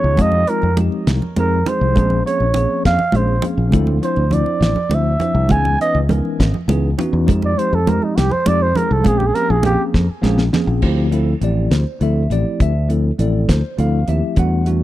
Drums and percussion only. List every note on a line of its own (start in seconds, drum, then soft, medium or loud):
0.17 kick medium
0.17 closed hi-hat medium
0.17 high conga medium
0.17 low conga soft
0.32 low conga medium
0.47 closed hi-hat medium
0.62 low conga soft
0.77 closed hi-hat medium
0.77 high conga medium
0.77 low conga medium
0.92 low conga soft
1.07 snare loud
1.07 closed hi-hat medium
1.22 low conga medium
1.36 closed hi-hat soft
1.36 high conga medium
1.36 low conga soft
1.66 closed hi-hat medium
1.66 low conga medium
1.96 kick medium
1.96 closed hi-hat medium
1.96 high conga medium
1.96 low conga soft
2.10 low conga medium
2.27 closed hi-hat medium
2.40 low conga soft
2.54 closed hi-hat medium
2.54 low conga medium
2.85 kick medium
2.85 snare loud
2.85 closed hi-hat medium
2.99 low conga medium
3.12 closed hi-hat medium
3.12 high conga loud
3.12 low conga soft
3.28 low conga soft
3.42 closed hi-hat medium
3.42 low conga medium
3.72 kick loud
3.72 closed hi-hat medium
3.72 high conga loud
3.72 low conga soft
3.87 low conga medium
4.03 closed hi-hat medium
4.16 low conga soft
4.31 closed hi-hat medium
4.31 low conga medium
4.46 low conga soft
4.62 snare loud
4.62 closed hi-hat medium
4.76 low conga medium
4.91 closed hi-hat medium
4.91 high conga loud
4.91 low conga soft
5.20 closed hi-hat medium
5.20 low conga medium
5.49 kick medium
5.49 closed hi-hat medium
5.49 high conga loud
5.49 low conga soft
5.65 low conga medium
5.81 closed hi-hat medium
5.95 low conga soft
6.09 closed hi-hat medium
6.09 high conga medium
6.09 low conga medium
6.25 low conga soft
6.40 kick medium
6.40 snare loud
6.40 closed hi-hat medium
6.54 low conga medium
6.69 closed hi-hat medium
6.69 high conga loud
6.69 low conga soft
6.99 closed hi-hat medium
6.99 low conga medium
7.28 kick loud
7.28 closed hi-hat medium
7.28 high conga loud
7.28 low conga soft
7.42 low conga medium
7.59 closed hi-hat medium
7.73 low conga soft
7.87 closed hi-hat medium
7.87 high conga medium
7.87 low conga loud
8.02 low conga soft
8.18 snare loud
8.18 closed hi-hat medium
8.31 low conga medium
8.46 closed hi-hat medium
8.46 high conga loud
8.46 low conga soft
8.75 closed hi-hat medium
8.75 low conga medium
9.05 kick medium
9.05 closed hi-hat medium
9.05 high conga loud
9.20 low conga medium
9.35 closed hi-hat medium
9.35 low conga soft
9.63 closed hi-hat medium
9.63 high conga medium
9.63 low conga medium
9.94 kick medium
9.94 snare medium
9.94 low conga soft
10.23 snare medium
10.23 high conga medium
10.38 snare medium
10.38 low conga soft
10.53 snare medium
10.53 low conga medium
10.69 low conga soft
10.82 kick medium
10.82 crash medium
11.12 closed hi-hat medium
11.42 closed hi-hat medium
11.71 snare loud
11.71 closed hi-hat medium
12.01 closed hi-hat soft
12.31 closed hi-hat medium
12.60 kick medium
12.60 closed hi-hat medium
12.90 closed hi-hat medium
13.19 closed hi-hat medium
13.49 kick medium
13.49 snare loud
13.49 closed hi-hat medium
13.79 closed hi-hat medium
14.08 closed hi-hat medium
14.36 kick medium
14.36 closed hi-hat medium
14.66 closed hi-hat medium